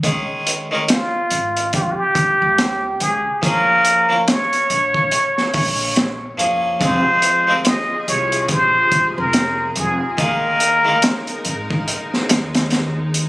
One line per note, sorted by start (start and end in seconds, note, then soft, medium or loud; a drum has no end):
0.03 0.26 C#2 medium
0.03 0.65 D#3 medium
0.03 0.66 G#3 medium
0.03 0.66 C#4 medium
0.03 0.67 G#4 medium
0.03 kick medium
0.03 closed hi-hat medium
0.47 closed hi-hat medium
0.71 0.82 D#3 medium
0.71 0.82 G#3 medium
0.71 0.83 C#4 medium
0.71 0.83 A#4 medium
0.88 1.70 F4 medium
0.88 snare loud
0.88 closed hi-hat medium
1.30 1.69 G#1 medium
1.30 closed hi-hat medium
1.56 closed hi-hat soft
1.73 1.96 F2 medium
1.73 1.84 G4 medium
1.73 kick loud
1.73 closed hi-hat medium
1.83 1.93 F4 medium
1.91 3.00 G4 medium
2.15 kick medium
2.15 closed hi-hat medium
2.42 2.97 C#2 medium
2.58 snare loud
2.58 closed hi-hat medium
3.00 3.23 C#2 loud
3.00 3.40 G#4 medium
3.00 closed hi-hat medium
3.42 4.04 F3 medium
3.42 4.04 A#3 medium
3.42 4.05 C#4 medium
3.42 4.05 G#4 medium
3.42 4.30 A#4 loud
3.42 kick loud
3.42 closed hi-hat medium
3.85 closed hi-hat medium
4.09 4.20 F3 medium
4.09 4.20 A#3 medium
4.09 4.21 C#4 medium
4.09 4.21 A#4 medium
4.28 6.39 C#5 loud
4.28 snare loud
4.28 closed hi-hat medium
4.53 closed hi-hat soft
4.70 5.08 A#1 medium
4.70 closed hi-hat medium
4.94 kick medium
5.11 closed hi-hat medium
5.38 snare soft
5.54 6.39 A#1 medium
5.54 kick medium
5.54 open hi-hat medium
5.96 snare medium
5.96 closed hi-hat medium
6.38 6.77 F1 loud
6.38 6.76 F3 medium
6.38 6.77 A#3 medium
6.38 6.77 C#4 medium
6.38 6.78 G#4 medium
6.38 closed hi-hat medium
6.79 7.03 F1 medium
6.79 10.16 C3 medium
6.79 7.41 F3 medium
6.79 10.16 F3 medium
6.79 7.42 G#3 medium
6.79 7.43 C4 medium
6.79 10.16 G#4 medium
6.79 7.43 G#4 medium
6.79 7.68 C5 loud
6.79 kick loud
6.79 closed hi-hat medium
7.22 closed hi-hat medium
7.47 7.58 F3 medium
7.47 7.58 G#3 medium
7.47 7.59 C4 medium
7.47 7.60 A#4 medium
7.65 8.07 D#5 loud
7.65 snare loud
7.65 closed hi-hat medium
8.08 8.46 C2 medium
8.08 8.47 C#5 medium
8.08 closed hi-hat medium
8.32 closed hi-hat soft
8.48 8.72 A#1 medium
8.48 9.20 C5 loud
8.48 kick loud
8.48 closed hi-hat medium
8.92 kick medium
8.92 closed hi-hat medium
9.18 9.73 F1 medium
9.18 9.77 A#4 medium
9.33 snare loud
9.33 closed hi-hat medium
9.76 9.99 F1 loud
9.76 10.16 G#4 medium
9.76 closed hi-hat medium
10.17 10.79 D#3 medium
10.17 10.80 G#3 medium
10.17 13.29 G#3 medium
10.17 10.80 A#3 medium
10.17 13.29 D#4 medium
10.17 10.81 G#4 medium
10.17 13.29 A#4 medium
10.17 11.42 A#4 loud
10.17 kick loud
10.17 closed hi-hat medium
10.60 closed hi-hat medium
10.85 10.96 D#3 medium
10.85 10.96 G#3 medium
10.85 10.97 A#3 medium
10.85 10.97 A#4 medium
11.02 snare loud
11.02 closed hi-hat medium
11.27 closed hi-hat soft
11.45 11.84 G#1 medium
11.45 closed hi-hat medium
11.71 kick medium
11.88 closed hi-hat medium
12.14 snare soft
12.29 13.29 D#2 medium
12.29 snare loud
12.29 closed hi-hat medium
12.55 snare medium
12.55 closed hi-hat medium
12.70 snare medium
12.70 closed hi-hat medium
13.14 closed hi-hat medium